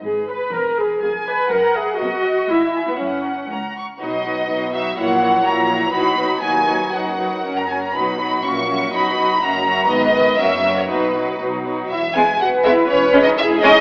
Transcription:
<<
  \new Staff \with { instrumentName = "Violin section" } { \time 2/4 \key b \major \tempo 4 = 122 r8 b'8 r8 b'8 | r8 d''8 r8 e''8 | r8 dis''8 r8 gis''8 | r8 ais''8 ais''8 cis'''8 |
dis''4. e''8 | fis''4 ais''4 | b''4 gis''4 | fis''4~ fis''16 ais''16 gis''16 ais''16 |
b''4 cis'''4 | b''4 ais''4 | dis''4 e''8. cis''16 | b'4 r4 |
\key e \major e''8 gis''8 fis''8 e''8 | \tuplet 3/2 { cis''4 dis''8 } e''8 dis''8 | }
  \new Staff \with { instrumentName = "Violin section" } { \time 2/4 \key b \major b'2 | aes''4 fis''4 | dis''4 e''4 | fis''4. r8 |
<fis' b'>8 <fis' b'>8 <fis' b'>8 <fis' b'>8 | <fis' cis''>8 <fis' cis''>8 <fis' cis''>8 <fis' cis''>8 | <fis' b'>8 <fis' b'>8 <fis' b'>8 <fis' b'>8 | <fis' b'>8 <fis' b'>8 ais'8 fis'8 |
<fis' b'>8 <fis' b'>8 <fis' e''>8 <fis' e''>8 | <fis' dis''>8 <fis' dis''>8 <fis' e''>8 <fis' e''>8 | <b' dis''>8 <b' dis''>8 <fis' ais'>8 <fis' ais'>8 | <fis' b'>8 <fis' b'>8 <fis' b'>8 <fis' b'>8 |
\key e \major r8 <gis b>16 r8. <gis b>16 r16 | r8 <gis cis'>16 r8. <gis cis'>16 r16 | }
  \new Staff \with { instrumentName = "Viola section" } { \time 2/4 \key b \major gis'8 b'8 ais'8 gis'8 | aes'8 ces''8 ais'8 gis'8 | fis'4 e'8. b16 | cis'4 r4 |
<fis dis'>8 <fis dis'>8 <fis dis'>8 <fis dis'>8 | <fis e'>8 <fis e'>8 <fis e'>8 <fis e'>8 | <fis dis'>8 <fis dis'>8 <fis dis'>8 <fis dis'>8 | <fis dis'>8 <fis dis'>8 <fis cis'>8 <fis cis'>8 |
<fis dis'>8 <fis dis'>8 <fis cis'>8 <fis cis'>8 | <fis dis'>8 <fis dis'>8 <fis cis'>8 <fis cis'>8 | <dis b>8 <dis b>8 <fis cis'>8 <fis cis'>8 | <fis dis'>8 <fis dis'>8 <fis dis'>8 <fis dis'>8 |
\key e \major e'8 gis'8 fis'8 e'8 | \tuplet 3/2 { cis'4 dis'8 } e'8 dis'8 | }
  \new Staff \with { instrumentName = "Cello section" } { \clef bass \time 2/4 \key b \major gis,4 e,4 | f,4 fis,4 | b,4 gis,4 | fis,4 cis,4 |
b,4 b,4 | ais,4 ais,4 | b,4 dis,4 | fis,4 fis,4 |
b,4 ais,4 | b,4 fis,4 | gis,4 fis,4 | b,4 b,4 |
\key e \major r4 b'4~ | b'4 gis'4 | }
  \new Staff \with { instrumentName = "Double bass section" } { \clef bass \time 2/4 \key b \major gis,,4 e,,4 | f,,4 fis,,4 | b,,4 gis,,4 | fis,,4 cis,4 |
b,,4 b,,4 | ais,,4 ais,,4 | b,,4 dis,4 | fis,,4 fis,,4 |
b,,4 ais,,4 | b,,4 fis,,4 | gis,,4 fis,,4 | b,,4 b,,4 |
\key e \major e,,4 b,,4 | e,,4 e,,4 | }
>>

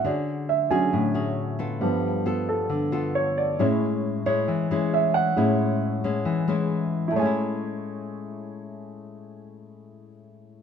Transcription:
<<
  \new Staff \with { instrumentName = "Grand piano" } { \time 4/4 \key a \major \tempo 4 = 135 d''4 e''8 gis''4. r4 | r4. a'4. cis''8 d''8 | r4. cis''4. e''8 fis''8 | r1 |
<a e' cis'' gis''>1~ | <a e' cis'' gis''>1 | }
  \new Staff \with { instrumentName = "Grand piano" } { \clef bass \time 4/4 \key a \major r4. <d fis cis'>8 r2 | <g, f b>1 | <a, gis cis'>4. r2 r8 | <a, gis cis'>4. r2 r8 |
r1 | r1 | }
  \new Staff \with { instrumentName = "Nylon-string guitar" } { \time 4/4 \key a \major << { <cis' fis' gis'>4 r8 <cis' fis' gis'>4 <cis' fis' gis'>4 <b f' a'>8~ | <b f' a'>4 <b f' a'>4 r8 <b f' a'>4. | <gis cis' e'>4. <gis cis' e'>4 <gis cis' e'>4. | <gis cis' e'>4. <gis cis' e'>4 <gis cis' e'>4. |
<a, gis cis' e'>1~ | <a, gis cis' e'>1 | } \\ { d2 a,2 | g2 d2 | a,2 e2 | a,2 e2 |
r1 | r1 | } >> }
>>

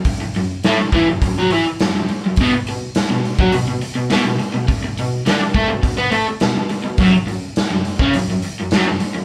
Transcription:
<<
  \new Staff \with { instrumentName = "Overdriven electric guitar" } { \clef bass \time 4/4 \key b \major \tempo 4 = 104 r8 fis,8 <a, a>16 r16 <e e'>16 fis,16 fis,16 <fis fis'>16 <e e'>16 r16 fis,16 fis,16 r16 fis,16 | <b, b>16 r16 b,8 r16 b,8 <fis fis'>16 b,16 b,16 r16 b,16 <b, b>16 b,16 r16 b,16 | r8 b,8 <d d'>16 r16 <a a'>16 b,16 b,16 <b b'>16 <a a'>16 r16 b,16 b,16 r16 b,16 | <fis, fis>16 r16 fis,8 r16 fis,8 <cis cis'>16 fis,16 fis,16 r16 fis,16 <fis, fis>16 fis,16 r16 fis,16 | }
  \new DrumStaff \with { instrumentName = "Drums" } \drummode { \time 4/4 <hho bd>8 hho8 <hho sn>8 <hho bd>8 <hho bd>8 hho8 <hho sn>8 hho8 | <hho bd>8 hho8 <hho sn>8 hho16 bd16 hho8 hho8 <hho sn>8 hho8 | <hho bd>8 hho8 <hho sn>8 <hho bd>8 <hho bd>8 hho8 <hho sn>8 hho8 | <hho bd>8 hho8 <hho sn>8 hho16 bd16 hho8 hho8 <hho sn>8 hho8 | }
>>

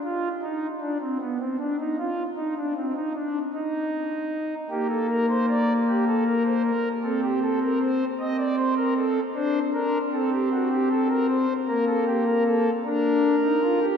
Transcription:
\new Staff \with { instrumentName = "Pipe organ" } { \time 12/8 \key g \phrygian \tempo 4. = 51 << { f'8 ees'8 d'16 c'16 b16 c'16 d'16 ees'16 f'8 ees'16 d'16 c'16 ees'16 d'8 ees'4. | g'16 a'16 bes'16 c''16 d''8 g'16 a'16 bes'16 c''16 bes'8 a'16 g'16 a'16 bes'16 c''8 ees''16 d''16 c''16 bes'16 a'8 | c''8 bes'8 a'16 g'16 fis'16 g'16 a'16 bes'16 c''8 bes'16 a'16 g'16 bes'16 a'8 bes'4. | } \\ { r1. | bes2. c'4. c'4. | d'8 d'8 c'2 bes4. d'8. ees'16 f'16 g'16 | } >> }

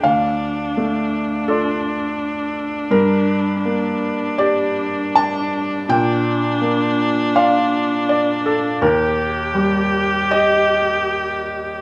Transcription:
<<
  \new Staff \with { instrumentName = "Felt piano" } { \time 4/4 \key g \minor \tempo 4 = 82 f''2 a'4. r8 | bes'2 d''4 a''4 | g''2 f''4 d''8 a'8 | bes'2 ees''2 | }
  \new Staff \with { instrumentName = "Felt piano" } { \time 4/4 \key g \minor d,4 a4 <f' d''>2 | g,4 bes4 g'2 | bes,4 bes4 <f' d''>2 | ees,4 g4 g'2 | }
  \new Staff \with { instrumentName = "Viola" } { \time 4/4 \key g \minor d'1~ | d'1 | d'1 | g'1 | }
>>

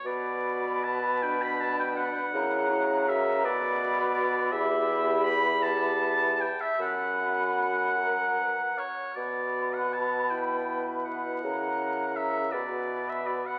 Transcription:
<<
  \new Staff \with { instrumentName = "Flute" } { \time 6/8 \key b \minor \tempo 4. = 53 b''2. | ais''4. b''4. | b''2~ b''8 r8 | b''4. ais''4 r8 |
b''2. | ais''4. b''4. | }
  \new Staff \with { instrumentName = "Oboe" } { \time 6/8 \key b \minor d''4 a''8 g''16 b''16 a''16 g''16 fis''8~ | fis''4 e''8 d''4 d''8 | e''4 b''8 a''4 g''16 e''16 | fis''2~ fis''8 cis''8 |
d''8. fis''16 a''8 g''4 fis''8~ | fis''4 e''8 d''8. e''16 d''16 fis''16 | }
  \new Staff \with { instrumentName = "Clarinet" } { \time 6/8 \key b \minor b'2. | ais'8 fis'8 ais'8 b'4. | g'2~ g'8 r8 | fis'4. ais'8 b'8 cis''8 |
r4. b'4. | ais'4. b'4. | }
  \new Staff \with { instrumentName = "French horn" } { \time 6/8 \key b \minor fis'4. d'4. | e'8 e'8 fis'8 fis'4. | g'2~ g'8 r8 | fis'4. ais'4 r8 |
fis'4. e'4.~ | e'4. fis'4. | }
  \new Staff \with { instrumentName = "Bassoon" } { \clef bass \time 6/8 \key b \minor b,2. | cis4. b,4. | e,2~ e,8 r8 | fis,2~ fis,8 r8 |
b,2. | cis4. b,4. | }
>>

